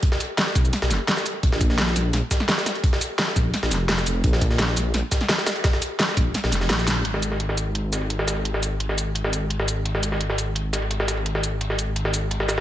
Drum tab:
HH |x-x-x-x-x-x-x-x-|x-x-x-x-x-xxx-xx|x-x-x-x-x-x-x-x-|x-x-x-x-x-xxx-xx|
SH |--x---xx--x--xx-|--x---x---x--xx-|--x---x---x--xx-|--x---x---x--xx-|
SD |-o--ooo-ooo-oo--|-o-oooo-o-ooooo-|-o--ooo-ooo-oo--|-o-oooo-o-ooooo-|
BD |o-----o---------|o-o-------o-----|o-----o---------|o-o-------o-----|

HH |x-x-x-x-x-x-x-x-|x-x-x-x-x-xxx-xx|x-x-x-x-x-x-x-x-|x-x-x-x-x-xxx-xx|
SH |--x---x---x--xx-|--x---x---x---x-|--x---x---x---x-|--x---x---x---x-|
SD |oo--ooo-ooooooo-|-o-o-o----o--oo-|-o---o---o---o--|-o-o-o----o--oo-|
BD |o-----o---------|----------------|----------------|----------------|

HH |x-x-x-x-x-x-x-x-|
SH |--x---x---x---x-|
SD |-o---o---o---oo-|
BD |----------------|